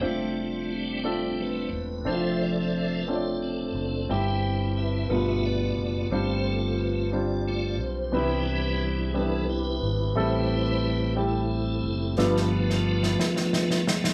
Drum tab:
SD |------------|------------|------------|------------|

SD |------------|------------|oo-o-ooooooo|